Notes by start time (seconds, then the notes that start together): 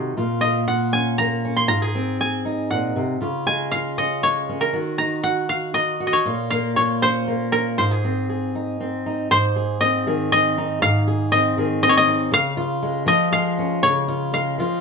Already playing: C3 D#3 D#4 F#4 G#4 A#4 C#5 D#5
0.17 A#2 F4
0.41 A#3 D#5
0.67 F4 F#5
0.93 C#4 G#5
1.18 A#3 A#5
1.45 C#4
1.57 C6
1.67 G#2 F4 A#5
1.82 G#4
1.95 C4
2.20 G#4 G#5
2.45 D#4
2.71 A#2 F#5
2.96 C3
3.21 C#3 F4
3.46 G#3 G#5
3.71 F4 F5
3.98 C#4 D#5
4.23 G#3 C#5
4.49 C#4
4.61 A#4
4.73 D#3 F#4
4.98 D#4 A#5
5.24 F#4 F#5
5.49 F#4 F5
5.74 D#4 D#5
6.00 F#4
6.07 D#5
6.13 C#5
6.25 A#2 F4
6.50 A#3 F5
6.76 F4 C#5
7.02 C#4 C5
7.28 A#3
7.52 C#4 A#4
7.78 G#2 F4 C5
7.91 G#4
8.05 C4
8.29 G#4
8.55 D#4
8.80 C4
9.06 D#4
9.31 G#2 C5
9.56 G#4
9.81 C4 D#5
10.07 D#3 G#4
10.32 C4 D#5
10.58 D#4
10.82 G#2 F5
11.07 G#4
11.32 C4 D#5
11.58 D#3 G#4
11.83 C4 D#5
11.89 C#5
11.97 D#5
12.08 D#4
12.31 C#3 F5
12.57 F4
12.82 G#3
13.06 F3 F4 D#5
13.32 G#3 F5
13.58 C#4
13.83 C#3 C#5
14.08 F4
14.33 G#3 F5
14.58 F3 F4